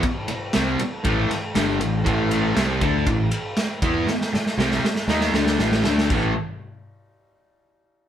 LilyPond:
<<
  \new Staff \with { instrumentName = "Distorted electric guitar" } { \clef bass \time 4/4 \key a \minor \tempo 4 = 118 r4 <c g c'>8 r8 <a, e a>8 r8 <g, d g>8 <a, e>8 | <a, e a>4 <c g c'>8 <d a d'>8 <a, e>8 r4 <e b e'>8 | r4 <c g c'>8 r8 <dis bes dis'>8 <d a d'>8 <a, e a>8 <d a d'>8 | <a, e a>8 r2. r8 | }
  \new Staff \with { instrumentName = "Fingered electric bass" } { \clef bass \time 4/4 \key a \minor r4 c,8 r8 a,,8 r8 g,,8 a,,8 | a,,4 c,8 d,8 a,,8 r4 e,8 | r4 c,8 r8 dis,8 d,8 a,,8 d,8 | a,,8 r2. r8 | }
  \new DrumStaff \with { instrumentName = "Drums" } \drummode { \time 4/4 <bd cymr>8 cymr8 <cymr sn>8 cymr8 <bd cymr>8 <cymr sn>8 <cymr sn>8 cymr8 | <bd cymr>8 cymr8 <cymr sn>8 <bd cymr>8 <bd cymr>8 cymr8 <cymr sn>8 <bd cymr>8 | sn16 sn16 sn16 sn16 sn16 sn16 sn16 sn16 sn16 sn16 sn16 sn16 sn16 sn16 sn16 sn16 | <cymc bd>4 r4 r4 r4 | }
>>